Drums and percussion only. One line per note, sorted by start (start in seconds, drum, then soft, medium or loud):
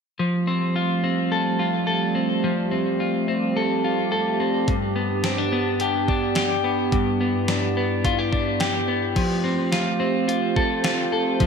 4.68 kick medium
4.68 closed hi-hat medium
5.24 snare medium
5.24 closed hi-hat medium
5.80 closed hi-hat medium
6.08 kick medium
6.35 snare loud
6.35 closed hi-hat medium
6.92 kick medium
6.92 closed hi-hat medium
7.48 snare medium
7.48 closed hi-hat medium
8.05 kick medium
8.05 closed hi-hat medium
8.33 kick medium
8.60 snare loud
8.60 closed hi-hat medium
9.16 kick medium
9.16 closed hi-hat medium
9.16 crash medium
9.72 snare medium
9.72 closed hi-hat medium
10.29 closed hi-hat medium
10.56 kick medium
10.84 snare loud
10.84 closed hi-hat medium
11.40 kick medium
11.40 closed hi-hat medium